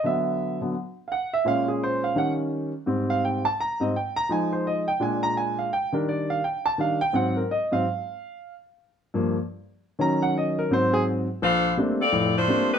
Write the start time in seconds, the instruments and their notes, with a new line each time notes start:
0.04 grand piano D3 F#3 B3 E5
0.61 grand piano D3 F#3 B3
1.08 grand piano F5
1.12 grand piano F#5
1.33 grand piano E5
1.45 grand piano A#2 G#3 C#4 F5
1.68 grand piano G#4
1.83 grand piano C5
2.04 grand piano F5
2.15 grand piano D#3 G3 C#4 F#5
2.86 grand piano G#2 G3 C4
3.10 grand piano F5
3.25 grand piano G5
3.45 grand piano A5
3.60 grand piano A#5
3.80 grand piano G#2 G3 C4 D#5
3.96 grand piano G5
4.16 grand piano A#5
4.29 grand piano F3 G#3 D#4 G#5
4.53 grand piano C5
4.67 grand piano D#5
4.88 grand piano G5
5.00 grand piano A#2 G#3 D4 G#5
5.23 grand piano A#5
5.37 grand piano G#5
5.59 grand piano F5
5.73 grand piano G5
5.92 grand piano D#3 G3 D4 A#4
6.09 grand piano D5
6.30 grand piano F5
6.44 grand piano G5
6.66 grand piano A5
6.78 grand piano D#3 G3 D4 F5
7.01 grand piano G5
7.13 grand piano G#2 F#3 C4 F#5
7.37 grand piano A#4
7.51 grand piano D#5
7.71 grand piano G#2 F#3 C4 F5
9.14 grand piano G2 F3 A#3
9.99 grand piano D#3 F#3 C#4 A#5
10.22 grand piano F#5
10.38 grand piano D#5
10.59 grand piano A#4
10.70 grand piano G#2 F#3 C4 C5
10.94 grand piano G#4
11.42 grand piano A#1, saxophone section D4 A4 C5 F5
11.77 grand piano G3 A3 A#3 C4 D4
12.00 saxophone section C4 F4 A4 D5
12.13 grand piano F1 A2
12.36 saxophone section A3 D4 F4 C5
12.48 grand piano G3 A3 A#3 C4 D4
12.72 saxophone section A3 D#4 G4 B4